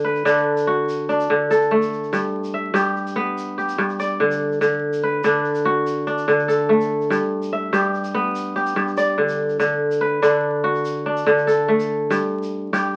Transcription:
Already playing: kora D3 D5
0.04 kora B4
0.15 shaker
0.25 kora D3 D4, shaker
0.37 shaker
0.57 shaker
0.67 kora F#4
0.89 shaker
1.09 kora D4, shaker
1.20 shaker
1.30 kora D3
1.51 kora A4, shaker
1.61 shaker
1.71 kora A3
1.82 shaker
1.93 shaker
2.03 shaker
2.13 kora G2, shaker
2.44 shaker
2.54 kora E5
2.74 kora G2 G4, shaker
2.96 shaker
3.07 shaker
3.16 kora B3
3.38 shaker
3.58 kora G4, shaker
3.69 shaker
3.78 kora G2, shaker
3.89 shaker
4.00 kora D5, shaker
4.20 kora D3
4.31 shaker
4.52 shaker
4.61 kora D3, shaker
4.93 shaker
5.03 kora B4
5.24 kora D3 D4, shaker
5.44 shaker
5.55 shaker
5.65 kora F#4
5.87 shaker
6.07 kora D4, shaker
6.18 shaker
6.28 kora D3, shaker
6.39 shaker
6.48 kora A4, shaker
6.69 kora A3
6.81 shaker
7.01 shaker
7.10 kora G2, shaker
7.42 shaker
7.53 kora E5
7.73 kora G2 G4, shaker
7.94 shaker
8.04 shaker
8.14 kora B3
8.35 shaker
8.56 kora G4, shaker
8.66 shaker
8.76 kora G2, shaker
8.87 shaker
8.97 kora D5, shaker
9.18 kora D3
9.29 shaker
9.49 shaker
9.60 kora D3, shaker
9.91 shaker
10.01 kora B4
10.22 kora D3 D4, shaker
10.64 kora F#4
10.75 shaker
10.85 shaker
11.06 kora D4
11.17 shaker
11.26 kora D3, shaker
11.38 shaker
11.47 kora A4, shaker
11.68 kora A3
11.80 shaker
12.10 kora G2, shaker
12.43 shaker
12.73 kora G2 G4, shaker

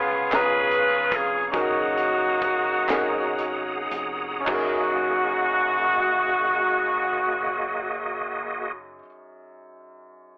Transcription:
Already playing: fingered electric bass C#2, upright piano C#3 B3 C#4 G#4 B4 F5, saxophone section B3 F4 G#4, tonewheel organ G#4 F5 C#6
0.31 fingered electric bass D#2, upright piano B3 C#4 F4 G#4 A#5, saxophone section B4, snare, clap, closed hi-hat
0.35 saxophone section F4 G#4
0.71 closed hi-hat
1.12 fingered electric bass F1, saxophone section G#4, kick, closed hi-hat
1.51 fingered electric bass F#1, upright piano C#4 D#4 F#4 G#4 A#4, tonewheel organ F#5 A#5 D#6, kick, closed hi-hat
1.56 saxophone section A#3 D#4 F#4
1.98 closed hi-hat
2.42 kick, closed hi-hat
2.88 fingered electric bass G#1, upright piano C#4 D#4 F#4 G#4 A#4, snare, clap, closed hi-hat
3.39 closed hi-hat
3.91 fingered electric bass F1, closed hi-hat
4.40 upright piano C#4 D#4
4.47 fingered electric bass F#1, upright piano F#2 F#4 G#4, tonewheel organ A#3 F#4 G#4 D#5, saxophone section F#4, kick, clap, floor tom, crash
4.54 upright piano A#4

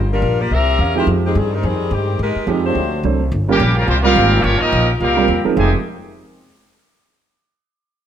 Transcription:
Already playing: upright bass G1
0.12 saxophone section G3 D4 F4 A#4
0.22 upright bass A#1
0.40 saxophone section A#3 F4 G4 D5
0.51 upright bass C2, saxophone section C4 G4 A#4 E5
0.79 upright bass E2, saxophone section C#4 G4 A#4 F5
0.95 grand piano F3 G#3 C4 D#4 G4, saxophone section E4 A#4 C5 G5
1.07 upright bass F2
1.25 saxophone section D#3 G#3 C4 G4
1.35 upright bass G2, saxophone section D#3 G3 C4 G#4
1.53 saxophone section G3 C4 D#4 A#4
1.63 upright bass F2, saxophone section D#3 G3 C4 G#4
1.91 upright bass G2, saxophone section D#3 G#3 C4 G4
2.19 upright bass G#2, saxophone section G#3 D#4 G4 A#4
2.36 muted upright bass stroke
2.47 upright bass F2, saxophone section D#3 G3 C4 G#4, grand piano F3 G#3 C4 D#4 G4
2.65 trombone section F#3 A3 C4, saxophone section A3 D4 F#4 C5
2.75 upright bass D2
3.03 upright bass C2, grand piano F#3 A3 C4 D4 C5
3.32 upright bass G1
3.48 trombone section A#2 C#3 G3, grand piano G3 A#3 C#4 F4 A#4, trumpet section A#3 C#4 G4
3.60 upright bass A#1
3.74 trombone section C#3 F3 A#3, trumpet section G3 C#4 F4 A#4
3.86 upright bass C2, trombone section F3 G3 C4, trumpet section A#3 F4 G4 C5
4.02 trombone section G3 A#3 F4, grand piano G3 A#3 C4 F4 A#4, trumpet section C4 G4 A#4 F5
4.16 upright bass G#1
4.42 upright bass G1, trombone section F3 A#3 C#4, trumpet section A#3 F4 G4 C#5
4.58 trombone section F3 A#3 D#4, trumpet section C#4 G4 A#4 D#5, muted upright bass stroke
4.72 upright bass A#1
4.99 upright bass C2, trombone section G3 A#3 F4, trumpet section C4 G4 A#4 F5
5.17 grand piano G3 A#3 C4 F4 A#4
5.28 upright bass D#2
5.44 grand piano F3 G#3 C4 D#4 A#4, muted upright bass stroke
5.56 upright bass F1, trombone section F2 C3 D#3 G#3, grand piano F3 G#3 C4 D#4 G4, trumpet section D#4 G4 C5 G#5

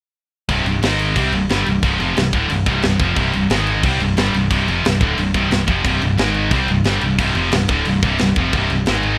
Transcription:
0.49 picked electric bass C1, distorted electric guitar C2 G2 C3, kick, crash
0.64 picked electric bass C1, distorted electric guitar C2 G2, crash
0.81 picked electric bass G#1, distorted electric guitar G#2 D#3 G#3, snare, crash
0.99 crash
1.16 picked electric bass C2, distorted electric guitar C3 G3 C4, kick, crash
1.33 picked electric bass C1, distorted electric guitar C2 G2, crash
1.49 picked electric bass G1, distorted electric guitar G2 D3 G3, snare, crash
1.66 picked electric bass C1, distorted electric guitar C2 G2, crash
1.82 picked electric bass C1, distorted electric guitar C2 G2 C3, kick, crash
2.00 picked electric bass F1, distorted electric guitar F2 C3 F3, crash
2.16 picked electric bass C1, distorted electric guitar C2 G2, snare, crash
2.33 picked electric bass D1, distorted electric guitar D2 A2 D3, kick, crash
2.50 picked electric bass C1, distorted electric guitar C2 G2, crash
2.66 picked electric bass C1, distorted electric guitar C2 G2 C3, kick, crash
2.82 picked electric bass C1, distorted electric guitar C2 G2, snare, crash
2.99 picked electric bass F1, distorted electric guitar F2 C3 F3, kick, crash
3.16 picked electric bass C1, distorted electric guitar C2 G2 C3, kick, crash
3.33 picked electric bass C1, distorted electric guitar C2 G2, crash
3.50 picked electric bass G#1, distorted electric guitar G#2 D#3 G#3, snare, crash
3.67 crash
3.83 picked electric bass C2, distorted electric guitar C3 G3 C4, kick, crash
3.99 picked electric bass C1, distorted electric guitar C2 G2, crash
4.16 picked electric bass G1, distorted electric guitar G2 D3 G3, snare, crash
4.33 picked electric bass C1, distorted electric guitar C2 G2, crash
4.50 picked electric bass C1, distorted electric guitar C2 G2 C3, kick, crash
4.67 picked electric bass F1, distorted electric guitar F2 C3 F3, crash
4.84 picked electric bass C1, distorted electric guitar C2 G2, snare, crash
5.01 picked electric bass D1, distorted electric guitar D2 A2 D3, kick, crash
5.17 picked electric bass C1, distorted electric guitar C2 G2, crash
5.34 picked electric bass C1, distorted electric guitar C2 G2 C3, kick, crash
5.51 picked electric bass C1, distorted electric guitar C2 G2, snare, crash
5.68 picked electric bass F1, distorted electric guitar F2 C3 F3, kick, crash
5.84 picked electric bass C1, distorted electric guitar C2 G2 C3, kick, crash
6.01 picked electric bass C1, distorted electric guitar C2 G2, crash
6.17 picked electric bass G#1, distorted electric guitar G#2 D#3 G#3, snare, crash
6.34 crash
6.51 picked electric bass C2, distorted electric guitar C3 G3 C4, kick, crash
6.68 picked electric bass C1, distorted electric guitar C2 G2, crash
6.84 picked electric bass G1, distorted electric guitar G2 D3 G3, snare, crash
7.01 picked electric bass C1, distorted electric guitar C2 G2, crash
7.18 picked electric bass C1, distorted electric guitar C2 G2 C3, kick, crash
7.35 picked electric bass F1, distorted electric guitar F2 C3 F3, crash
7.51 picked electric bass C1, distorted electric guitar C2 G2, snare, crash
7.68 picked electric bass D1, distorted electric guitar D2 A2 D3, kick, crash
7.85 picked electric bass C1, distorted electric guitar C2 G2, crash
8.03 picked electric bass C1, distorted electric guitar C2 G2 C3, kick, crash
8.18 picked electric bass C1, distorted electric guitar C2 G2, snare, crash
8.36 picked electric bass F1, distorted electric guitar F2 C3 F3, kick, crash
8.53 picked electric bass C1, distorted electric guitar C2 G2 C3, kick, crash
8.70 picked electric bass C1, distorted electric guitar C2 G2, crash
8.86 picked electric bass G#1, distorted electric guitar G#2 D#3 G#3, snare, crash
9.03 crash

